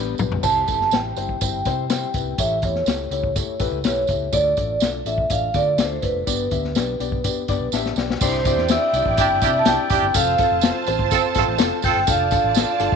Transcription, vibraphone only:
0.44 0.94 A5 loud
0.94 1.41 G5 medium
1.42 2.42 G5 medium
2.39 2.50 E5 medium
2.65 3.57 C#5 medium
3.85 4.35 C#5 medium
4.34 4.79 D5 loud
5.07 5.18 E5 loud
5.31 5.56 F5 loud
5.55 5.80 D5 medium
5.78 6.03 C5 medium
6.02 7.68 B4 medium
8.22 8.67 C5 loud
8.71 9.20 E5 medium
9.20 9.44 G5 loud
9.43 9.60 E5 loud
9.59 9.66 A5 medium
9.68 10.17 G5 loud
10.17 10.65 F5 loud
10.66 11.33 C5 medium
11.85 12.09 G5 loud
12.10 12.96 F5 loud

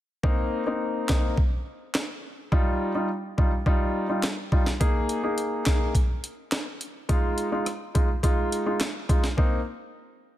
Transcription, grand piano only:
0.23 0.63 A#3 medium
0.23 0.63 C4 medium
0.23 0.63 D#4 loud
0.66 1.06 A#3 medium
0.66 1.06 C4 medium
0.66 1.06 D#4 medium
1.09 1.35 A#3 medium
1.09 1.36 C4 medium
1.09 1.36 D#4 medium
2.52 2.91 G3 medium
2.52 2.92 D#4 medium
2.52 2.92 F4 loud
2.95 3.07 G3 medium
2.95 3.08 D#4 medium
2.95 3.08 F4 medium
3.38 3.50 G3 medium
3.38 3.50 D#4 medium
3.38 3.51 F4 medium
3.66 4.06 G3 medium
3.66 4.06 D#4 medium
3.66 4.06 F4 loud
4.09 4.22 G3 medium
4.09 4.22 D#4 medium
4.09 4.22 F4 medium
4.52 4.65 G3 medium
4.52 4.65 D#4 medium
4.52 4.65 F4 medium
4.80 5.20 A#3 medium
4.80 5.20 D#4 medium
4.80 5.20 G#4 loud
5.23 5.63 A#3 medium
5.23 5.63 D#4 medium
5.23 5.63 G#4 medium
5.66 5.92 A#3 medium
5.66 5.93 D#4 medium
5.66 5.93 G#4 medium
7.09 7.48 G#3 medium
7.09 7.49 D#4 medium
7.09 7.49 F4 loud
7.52 7.64 G#3 medium
7.52 7.65 D#4 medium
7.52 7.65 F4 medium
7.95 8.07 G#3 medium
7.95 8.07 D#4 medium
7.95 8.08 F4 medium
8.23 8.63 G#3 medium
8.23 8.63 D#4 medium
8.23 8.63 F4 loud
8.66 8.79 G#3 medium
8.66 8.79 D#4 medium
8.66 8.79 F4 medium
9.09 9.22 G#3 medium
9.09 9.22 D#4 medium
9.09 9.22 F4 medium
9.37 9.59 A#3 medium
9.37 9.59 C4 medium
9.37 9.59 D#4 medium

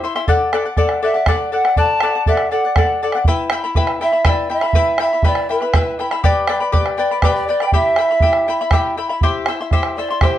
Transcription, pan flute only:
1.04 1.30 E5 medium
1.29 1.52 D5 medium
1.53 1.76 F#5 loud
1.78 2.24 A5 loud
2.28 2.52 E5 medium
2.50 3.07 F#5 medium
4.03 4.28 E5 medium
4.27 4.51 D5 medium
4.52 4.97 E5 loud
5.02 5.28 E5 medium
5.27 5.52 D5 medium
5.50 6.06 B4 medium
6.97 7.21 D5 medium
7.22 7.36 B4 medium
7.34 7.47 D5 medium
7.47 7.67 D5 medium
7.65 7.74 G5 medium
7.73 8.72 E5 loud
9.97 10.23 D5 medium
10.22 10.38 C5 medium

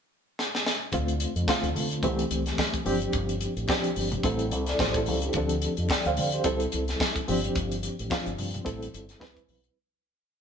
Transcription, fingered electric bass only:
0.93 1.25 D2 loud
1.36 1.45 F2 medium
1.63 1.72 D2 loud
1.75 2.04 D3 loud
2.03 2.23 C2 loud
2.31 2.51 C2 medium
2.86 3.06 G1 loud
3.14 3.45 G1 medium
3.56 3.65 A1 medium
3.96 4.17 G1 medium
4.24 4.52 A1 loud
4.52 4.72 C2 medium
4.79 5.08 A1 medium
5.08 5.28 C#2 medium
5.34 5.66 D2 loud
5.78 5.87 F2 medium
6.06 6.14 D2 medium
6.18 6.38 D3 medium
6.45 6.65 C2 loud
6.74 6.94 C2 medium
7.29 7.49 G1 loud
7.56 7.88 G1 medium
8.00 8.08 A1 medium
8.27 8.35 G1 medium
8.39 8.59 G2 medium
8.66 8.87 A1 loud
8.94 9.14 G1 medium
9.21 9.42 C2 medium
9.48 9.69 B1 medium

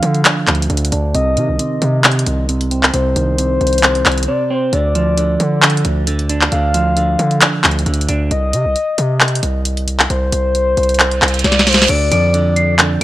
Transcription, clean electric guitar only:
0.00 0.24 D3 medium
0.00 0.70 F3 medium
0.00 0.25 D4 medium
0.25 0.69 D3 medium
0.70 1.15 D3 medium
0.92 1.15 D4 medium
1.15 1.58 C3 loud
1.37 2.49 D#3 medium
1.59 2.03 C3 medium
2.04 2.48 C3 medium
2.49 2.92 C3 medium
2.71 3.83 C4 medium
2.94 3.37 C3 medium
3.16 4.28 D#3 medium
3.38 3.82 C3 medium
3.83 4.27 C3 medium
4.28 4.73 C3 medium
4.50 4.73 C4 medium
4.73 5.16 D3 medium
4.95 6.07 F3 medium
5.18 5.61 D3 medium
5.62 6.06 D3 medium
6.07 6.51 D3 medium
6.30 7.41 D4 medium
6.52 6.96 D3 medium
6.74 7.86 F3 medium
6.97 7.40 D3 medium
7.42 7.85 D3 medium
7.86 8.31 D3 medium
8.09 8.31 D4 medium
11.89 12.33 D3 medium
12.12 13.04 F3 medium
12.34 12.78 D3 medium
12.79 13.04 D3 medium

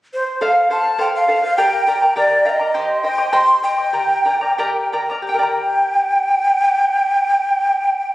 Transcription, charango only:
0.41 0.69 A4 medium
0.41 0.70 C5 medium
0.41 0.70 F5 medium
0.70 0.85 A4 soft
0.70 0.83 C5 medium
0.70 0.82 F5 medium
0.84 0.98 C5 soft
0.84 0.98 F5 soft
0.98 1.27 A4 medium
0.98 1.28 C5 medium
0.98 1.28 F5 medium
1.28 1.43 A4 medium
1.28 1.42 C5 medium
1.28 1.41 F5 medium
1.42 1.57 C5 soft
1.42 1.57 F5 soft
1.58 1.87 G4 medium
1.58 1.86 A#4 medium
1.58 1.87 D5 medium
1.58 1.85 G5 medium
1.58 1.87 A#5 medium
1.87 2.02 A#4 medium
1.87 2.01 D5 medium
1.87 2.01 G5 medium
1.87 2.00 A#5 medium
2.02 2.15 A#4 soft
2.02 2.16 D5 soft
2.02 2.16 A#5 soft
2.16 2.45 G4 medium
2.16 2.44 A#4 medium
2.16 2.45 D5 medium
2.16 2.44 G5 medium
2.16 2.45 A#5 medium
2.45 2.60 A#4 medium
2.45 2.59 D5 medium
2.45 2.60 G5 medium
2.45 2.58 A#5 medium
2.59 2.74 A#4 soft
2.59 2.74 D5 soft
2.59 2.74 A#5 soft
2.74 3.04 G4 medium
2.74 3.03 C5 medium
2.74 3.03 D#5 medium
2.74 3.02 G5 medium
2.74 3.03 C6 medium
3.03 3.18 C5 soft
3.03 3.18 D#5 medium
3.03 3.18 G5 medium
3.03 3.17 C6 medium
3.18 3.32 C5 soft
3.18 3.32 D#5 soft
3.18 3.32 C6 soft
3.32 3.63 G4 medium
3.32 3.62 C5 medium
3.32 3.62 D#5 medium
3.32 3.61 G5 medium
3.32 3.63 C6 medium
3.63 3.78 C5 medium
3.63 3.77 D#5 medium
3.63 3.78 G5 medium
3.63 3.77 C6 medium
3.78 3.93 C5 soft
3.78 3.93 D#5 soft
3.78 3.93 C6 soft
3.93 4.25 G4 medium
3.93 4.24 A#4 medium
3.93 4.24 D5 medium
3.93 4.23 G5 medium
3.93 4.25 A#5 medium
4.25 4.41 A#4 medium
4.25 4.41 D5 medium
4.25 4.42 G5 medium
4.25 4.40 A#5 medium
4.41 4.57 A#4 soft
4.41 4.58 D5 soft
4.41 4.58 A#5 soft
4.58 4.93 G4 medium
4.58 4.92 A#4 medium
4.58 4.92 D5 medium
4.58 4.91 G5 medium
4.58 4.92 A#5 medium
4.92 5.10 A#4 medium
4.92 5.09 D5 medium
4.92 5.10 G5 medium
4.92 5.08 A#5 medium
5.10 5.29 A#4 soft
5.10 5.29 D5 soft
5.10 5.28 A#5 medium
5.22 8.15 G4 medium
5.29 8.15 G5 medium
5.34 8.15 A#4 medium
5.39 8.15 D5 medium
5.43 8.15 A#5 medium

